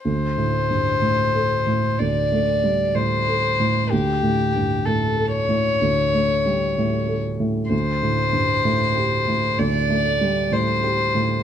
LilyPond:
<<
  \new Staff \with { instrumentName = "Violin" } { \time 4/4 \key c \mixolydian \tempo 4 = 63 c''2 d''4 c''4 | g'4 a'8 cis''2 r8 | c''2 d''4 c''4 | }
  \new Staff \with { instrumentName = "Upright piano" } { \clef bass \time 4/4 \key c \mixolydian \tuplet 3/2 { d,8 a,8 g,8 a,8 a'8 a,8 d,8 a8 g8 a,8 a'8 a,8 } | \tuplet 3/2 { d,8 a,8 g,8 a,8 a'8 a,8 d,8 a8 g8 a,8 a'8 a,8 } | \tuplet 3/2 { d,8 a,8 g,8 a,8 g'8 a,8 d,8 a8 g8 a,8 g'8 a,8 } | }
>>